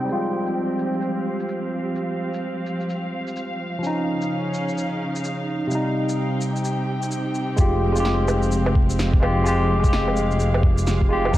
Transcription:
Already playing: tine electric piano C3 G3 D#4, string section C4 D#4 G4 G5
0.05 string section F3, tine electric piano G3
0.09 tine electric piano G#3 F4, shaker
0.46 shaker
0.79 shaker
0.93 shaker
0.97 string section F5
1.02 shaker
1.40 shaker
1.49 shaker
1.96 shaker
2.34 shaker
2.66 shaker
2.80 shaker
2.90 shaker
3.27 shaker
3.36 shaker
3.79 tine electric piano F3
3.83 string section C#3, tine electric piano C#4 D#4, shaker
4.01 string section D#4
4.07 string section C#4
4.22 shaker
4.54 shaker
4.69 shaker
4.78 shaker
5.16 shaker
5.25 shaker
5.67 tine electric piano C3
5.71 string section C3, tine electric piano G3 D#4, shaker
5.98 string section C4 G5
6.09 shaker
6.41 shaker
6.50 string section G4
6.56 shaker
6.65 shaker
7.03 shaker
7.12 shaker
7.35 shaker
7.56 detuned saw bass F1, string section F3, tine electric piano G#3 F4 G4, kick, shaker
7.82 string section G#3
7.92 tine electric piano G#3 F4
7.96 tine electric piano G4, shaker
8.05 snare
8.28 low woodblock, shaker
8.43 shaker
8.52 shaker
8.58 string section F5
8.66 low woodblock
8.75 kick
8.90 shaker
8.99 snare, shaker
9.14 kick
9.20 tine electric piano G#3 F4, low woodblock
9.24 tine electric piano G4
9.44 tine electric piano G#3 F4 G4, shaker
9.80 tine electric piano G#3
9.84 tine electric piano F4, kick, shaker
9.88 tine electric piano G4
9.93 snare
10.08 low woodblock
10.17 shaker
10.31 shaker
10.40 shaker
10.54 low woodblock
10.63 kick
10.78 shaker
10.87 snare, shaker
11.01 kick
11.09 tine electric piano G#3 F4 G4
11.25 low woodblock
11.31 detuned saw bass C#2, string section C#3, tine electric piano F3 C#4, kick, shaker

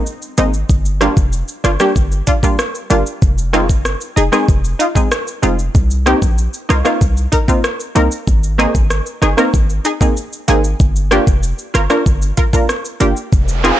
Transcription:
0.06 shaker
0.22 shaker
0.38 808-style bass G#1, synth stab G#3 A#3 C4 D#4, closed hi-hat, shaker
0.54 shaker
0.70 808-style bass G1, kick, shaker
0.85 shaker
1.01 synth stab G3 A#3 D4 F4, cross-stick, closed hi-hat, shaker
1.17 808-style bass F1, kick, shaker
1.33 shaker
1.48 shaker
1.64 808-style bass G1, synth stab D4 F4, cross-stick, closed hi-hat, shaker
1.80 synth stab G3 A#3 D4 G4, cross-stick, shaker
1.96 808-style bass G1, kick, shaker
2.12 shaker
2.27 synth stab D4 F4, kick, closed hi-hat, shaker
2.43 synth stab G3 A#3 D4 F4, kick, shaker
2.59 cross-stick, shaker
2.75 shaker
2.90 808-style bass G1, synth stab G3 A#3 D4 F4, closed hi-hat, shaker
3.06 shaker
3.22 808-style bass F1, kick, shaker
3.38 shaker
3.53 synth stab G#3 C4 D#4 F4, cross-stick, closed hi-hat, shaker
3.69 808-style bass G1, kick, shaker
3.85 cross-stick, shaker
4.01 shaker
4.16 808-style bass F1, synth stab D#4 G#4, closed hi-hat, shaker
4.32 synth stab G#3 C4 D#4 G#4, cross-stick, shaker
4.49 808-style bass F1, kick, shaker
4.64 shaker
4.79 synth stab D#4 F4, closed hi-hat, shaker
4.95 synth stab G#3 C4 D#4 G#4, kick, shaker
5.12 cross-stick, shaker
5.27 shaker
5.42 808-style bass F1, synth stab G#3 C4 D#4 F4, closed hi-hat, shaker
5.59 shaker
5.75 808-style bass C2, kick, shaker
5.91 shaker
6.06 synth stab A#3 C4 D#4 G4, cross-stick, closed hi-hat, shaker
6.22 808-style bass A#1, kick, shaker
6.38 shaker
6.54 shaker
6.69 808-style bass C2, synth stab D#4 F4, cross-stick, closed hi-hat, shaker
6.85 synth stab A#3 C4 D#4 F4, cross-stick, shaker
7.01 808-style bass C2, kick, shaker
7.17 shaker
7.32 synth stab D#4 A#4, kick, closed hi-hat, shaker
7.48 synth stab A#3 C4 D#4 F4, kick, shaker
7.64 cross-stick, shaker
7.80 shaker
7.95 808-style bass C2, synth stab A#3 C4 D#4 A#4, closed hi-hat, shaker
8.12 shaker
8.27 808-style bass G#1, kick, shaker
8.43 shaker
8.58 synth stab A#3 C4 D#4 G#4, cross-stick, closed hi-hat, shaker
8.75 808-style bass G#1, kick, shaker
8.90 cross-stick, shaker
9.06 shaker
9.22 808-style bass G1, synth stab D#4 G#4, cross-stick, closed hi-hat, shaker
9.37 synth stab A#3 C4 D#4 A#4, cross-stick, shaker
9.54 808-style bass G#1, kick, shaker
9.70 shaker
9.85 synth stab D#4 G#4, closed hi-hat, shaker
10.01 synth stab A#3 C4 D#4 G#4, kick, shaker
10.17 shaker
10.33 shaker
10.48 808-style bass G#1, synth stab A#3 C4 D#4 G#4, closed hi-hat, shaker
10.64 shaker
10.80 808-style bass G1, kick, shaker
10.96 shaker
11.11 synth stab A#3 D4 F4 G4, cross-stick, closed hi-hat, shaker
11.27 808-style bass F1, kick, shaker
11.43 shaker
11.58 shaker
11.74 808-style bass G1, synth stab F4 A#4, cross-stick, closed hi-hat, shaker
11.90 synth stab A#3 D4 F4 A#4, cross-stick, shaker
12.06 808-style bass G1, kick, shaker
12.22 shaker
12.37 synth stab F4 A#4, kick, closed hi-hat, shaker
12.53 synth stab A#3 D4 F4 A#4, kick, shaker
12.69 cross-stick, shaker
12.85 shaker
13.00 808-style bass G1, synth stab A#3 D4 F4 G4, closed hi-hat, shaker
13.17 shaker
13.33 808-style bass F1, kick, noise sweep, shaker
13.48 shaker
13.64 synth stab C4 D#4 F4 G#4, cross-stick, closed hi-hat, shaker

